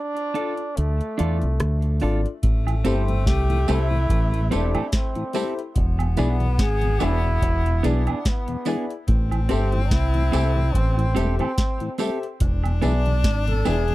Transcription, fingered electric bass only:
0.78 D2
1.20 E2
1.44 C2
1.61 D2
2.03 G#1
2.44 A1
2.86 G1
3.27 C2
3.70 C2
4.10 A1
4.53 E1
5.77 E1
6.19 B1
6.59 G#1
7.03 E1
7.42 E1
7.85 B1
9.09 A1
9.52 G1
9.92 C2
10.34 C2
10.75 A1
11.17 E1
12.41 E1
12.84 B1
13.24 G#1
13.67 E1

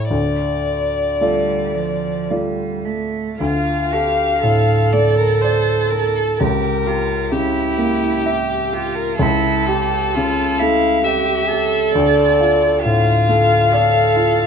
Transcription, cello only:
1.20 G3
1.74 F3
2.29 G3
2.85 A3
3.40 F4
3.94 G4
4.45 A4
6.39 G4
6.86 F4
7.34 E4
8.27 G4
8.73 F4
9.21 E4
9.66 G4
10.15 F4
10.59 E4
11.04 G4
11.48 A4
12.82 F4
13.72 A4

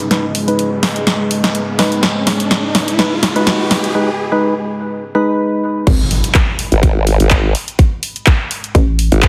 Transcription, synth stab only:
0.11 G#3 D#4 B4
0.48 G#3 D#4 B4
1.79 G#3 D#4 B4
2.99 G#3 D#4 B4
3.36 G#3 D#4 B4
3.95 G#3 D#4 B4
4.32 G#3 D#4 B4
5.15 G#3 D#4 B4

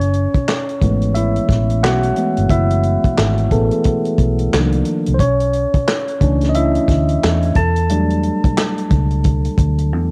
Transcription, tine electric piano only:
Already playing: C#4 C#5
0.82 E3 G#3 A3 B3
1.15 E4 E5
1.83 F#4 F#5
2.17 E3 G#3 A3 B3
2.50 E4 E5
3.52 E3 A3 B3 G#4 A4
4.53 D#3 F3 A#3 D4
5.14 C5
5.20 C#4 C#5
6.22 E3 A3 C#4 D4
6.49 D#5
6.55 E4 E5
7.56 A4 A5
7.91 F#3 G3 A3 D4

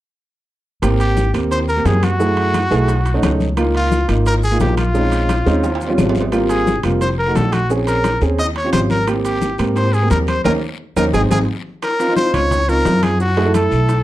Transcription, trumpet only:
1.00 G4
1.51 C5
1.69 A#4
1.86 G#4
2.04 F#4
3.76 F4
4.27 A#4
4.44 G#4
4.61 G4
4.78 F4
6.50 G#4
7.01 C5
7.19 A#4
7.36 A4
7.53 F#4
7.88 A#4
8.39 D#5
8.57 C#5
8.73 C5
8.91 A#4
9.25 G4
9.76 C5
9.94 G#4
10.11 A#4
10.28 C5
10.45 A#4
10.97 A#4
11.13 G#4
11.31 G#4
11.83 A#4
12.17 C5
12.34 C#5
12.69 A#4
13.03 G#4
13.21 F#4
13.55 A4

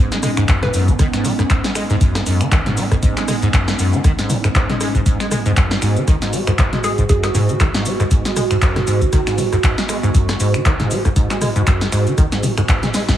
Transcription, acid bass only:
0.12 G#3
0.23 G#3
0.37 G#2
0.48 F#2
0.63 G#2
0.74 F#2
0.88 D#3
0.99 D#3
1.14 G#2
1.25 G#3
1.39 G#2
1.50 G#2
1.64 G#3
1.76 G#3
1.90 G#2
2.01 F#2
2.15 G#2
2.27 F#2
2.41 D#3
2.52 D#3
2.66 G#2
2.77 G#3
2.92 G#2
3.03 G#2
3.17 G#3
3.28 G#3
3.42 G#2
3.53 F#2
3.68 G#2
3.79 F#2
3.93 D#3
4.05 D#3
4.19 G#2
4.30 G#3
4.44 G#2
4.55 G#2
4.69 G#3
4.81 G#3
4.95 G#2
5.06 G#2
5.20 G#3
5.31 G#3
5.46 G#2
5.57 F#2
5.71 G#2
5.82 G#2
5.97 D#3
6.08 D#3
6.22 G#2
6.33 G#3
6.47 G#2
6.58 G#2
6.73 G#3
6.84 G#3
6.98 G#2
7.09 F#2
7.24 G#2
7.35 G#2
7.49 D#3
7.60 D#3
7.74 G#2
7.86 G#3
8.00 G#2
8.11 G#2
8.26 G#3
8.37 G#3
8.51 G#2
8.62 F#2
8.76 G#2
8.87 G#2
9.02 D#3
9.13 D#3
9.27 G#2
9.38 G#3
9.52 G#2
9.64 G#2
9.78 G#3
9.89 G#3
10.03 G#2
10.14 F#2
10.29 G#2
10.40 G#2
10.54 D#3
10.65 D#3
10.80 G#2
10.91 G#3
11.05 G#2
11.16 G#2
11.31 G#3
11.42 G#3
11.56 G#2
11.67 F#2
11.81 G#2
11.92 G#2
12.07 D#3
12.18 D#3
12.32 G#2
12.43 G#3
12.58 G#2
12.69 G#2
12.83 G#3
12.94 G#3
13.08 G#2

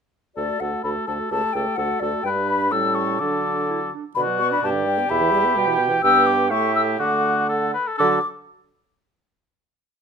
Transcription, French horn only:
0.37 A3
0.61 A3
0.85 A3
1.08 A3
1.32 A3
1.55 A3
1.78 A3
2.01 A3
2.25 G3
2.72 G3
3.20 F#3
4.16 D3
4.28 F#3
4.40 B3
4.52 D4
4.63 B2
4.74 D3
4.86 G3
4.98 B3
5.09 B2
5.21 E3
5.32 G3
5.44 B3
5.56 G3
5.67 E3
5.78 B2
5.90 E3
6.03 B3
6.50 A3
6.99 A3
7.99 F#3

